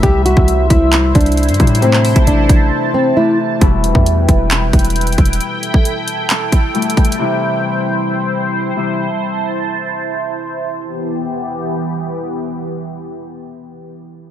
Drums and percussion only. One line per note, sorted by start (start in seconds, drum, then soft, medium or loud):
0.03 kick loud
0.03 closed hi-hat medium
0.26 closed hi-hat medium
0.37 kick loud
0.48 closed hi-hat medium
0.70 kick loud
0.70 closed hi-hat medium
0.93 clap loud
0.93 closed hi-hat medium
1.15 kick medium
1.15 closed hi-hat medium
1.21 closed hi-hat medium
1.26 closed hi-hat medium
1.32 closed hi-hat medium
1.37 closed hi-hat medium
1.43 closed hi-hat medium
1.49 closed hi-hat medium
1.54 closed hi-hat medium
1.60 kick loud
1.60 closed hi-hat medium
1.67 closed hi-hat medium
1.75 closed hi-hat medium
1.82 closed hi-hat medium
1.93 clap medium
2.05 closed hi-hat medium
2.05 open hi-hat medium
2.16 kick loud
2.16 closed hi-hat medium
2.27 closed hi-hat medium
2.49 kick loud
2.49 closed hi-hat medium
3.61 kick loud
3.61 closed hi-hat medium
3.84 closed hi-hat medium
3.95 kick loud
4.06 closed hi-hat medium
4.29 kick loud
4.29 closed hi-hat medium
4.51 clap loud
4.51 closed hi-hat medium
4.73 kick loud
4.73 closed hi-hat medium
4.79 closed hi-hat medium
4.85 closed hi-hat medium
4.90 closed hi-hat medium
4.96 closed hi-hat medium
5.01 closed hi-hat medium
5.07 closed hi-hat medium
5.12 closed hi-hat medium
5.18 kick medium
5.18 closed hi-hat medium
5.25 closed hi-hat medium
5.33 closed hi-hat medium
5.41 closed hi-hat medium
5.63 closed hi-hat medium
5.74 kick loud
5.85 closed hi-hat medium
6.08 closed hi-hat medium
6.30 clap loud
6.30 closed hi-hat medium
6.52 kick medium
6.52 closed hi-hat medium
6.75 closed hi-hat soft
6.82 closed hi-hat medium
6.90 closed hi-hat medium
6.97 kick medium
6.97 closed hi-hat medium
7.05 closed hi-hat medium
7.12 closed hi-hat medium